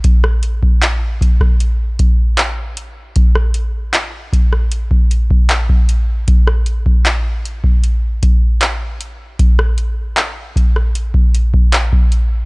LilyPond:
\new DrumStaff \with { instrumentName = "Drums" } \drummode { \time 4/4 \tempo 4 = 77 <hh bd>16 ss16 hh16 bd16 <hc hh>8 <hh bd>16 <bd ss>16 hh8 <hh bd>8 <hc hh>8 hh8 | <hh bd>16 ss16 hh8 <hc hh>8 <hh bd>16 ss16 hh16 bd16 hh16 bd16 <hc hh>16 bd16 hh8 | <hh bd>16 ss16 hh16 bd16 <hc hh>8 hh16 bd16 hh8 <hh bd>8 <hc hh>8 hh8 | <hh bd>16 ss16 hh8 <hc hh>8 <hh bd>16 ss16 hh16 bd16 hh16 bd16 <hc hh>16 bd16 hh8 | }